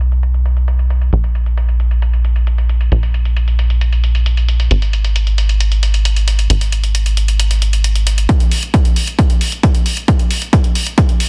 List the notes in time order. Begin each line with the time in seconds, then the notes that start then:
Already playing: B1
0.01 closed hi-hat
0.12 closed hi-hat
0.23 closed hi-hat
0.34 closed hi-hat
0.46 closed hi-hat
0.57 closed hi-hat
0.68 closed hi-hat
0.79 closed hi-hat
0.90 closed hi-hat
1.02 closed hi-hat
1.13 A#1, closed hi-hat
1.24 closed hi-hat
1.35 closed hi-hat
1.46 closed hi-hat
1.57 closed hi-hat
1.69 closed hi-hat
1.80 closed hi-hat
1.91 closed hi-hat
2.02 closed hi-hat
2.13 closed hi-hat
2.25 closed hi-hat
2.36 closed hi-hat
2.47 closed hi-hat
2.58 closed hi-hat
2.69 closed hi-hat
2.81 closed hi-hat
2.92 A#1, closed hi-hat
3.03 closed hi-hat
3.14 closed hi-hat
3.25 closed hi-hat
3.37 closed hi-hat
3.48 closed hi-hat
3.59 closed hi-hat
3.70 closed hi-hat
3.81 closed hi-hat
3.93 closed hi-hat
4.04 closed hi-hat
4.15 closed hi-hat
4.26 closed hi-hat
4.37 closed hi-hat
4.49 closed hi-hat
4.60 closed hi-hat
4.71 G#1, closed hi-hat
4.82 closed hi-hat
4.93 closed hi-hat
5.05 closed hi-hat
5.16 closed hi-hat
5.27 closed hi-hat
5.38 closed hi-hat
5.49 closed hi-hat
5.61 closed hi-hat
5.72 closed hi-hat
5.83 closed hi-hat
5.94 closed hi-hat
6.05 closed hi-hat
6.16 closed hi-hat
6.28 closed hi-hat
6.39 closed hi-hat
6.50 G#1, closed hi-hat
6.61 closed hi-hat
6.72 closed hi-hat
6.84 closed hi-hat
6.95 closed hi-hat
7.06 closed hi-hat
7.17 closed hi-hat
7.28 closed hi-hat
7.40 closed hi-hat
7.51 closed hi-hat
7.62 closed hi-hat
7.73 closed hi-hat
7.84 closed hi-hat
7.96 closed hi-hat
8.07 closed hi-hat
8.18 closed hi-hat
8.29 kick, closed hi-hat
8.40 closed hi-hat
8.51 open hi-hat
8.63 closed hi-hat
8.74 kick, closed hi-hat
8.85 closed hi-hat
8.96 open hi-hat
9.07 closed hi-hat
9.19 kick, closed hi-hat
9.30 closed hi-hat
9.41 open hi-hat
9.52 closed hi-hat
9.63 kick, closed hi-hat
9.75 closed hi-hat
9.86 open hi-hat
9.97 closed hi-hat
10.08 kick, closed hi-hat
10.19 closed hi-hat
10.31 open hi-hat
10.42 closed hi-hat
10.53 kick, closed hi-hat
10.64 closed hi-hat
10.75 open hi-hat
10.87 closed hi-hat
10.98 kick, closed hi-hat
11.09 closed hi-hat
11.20 open hi-hat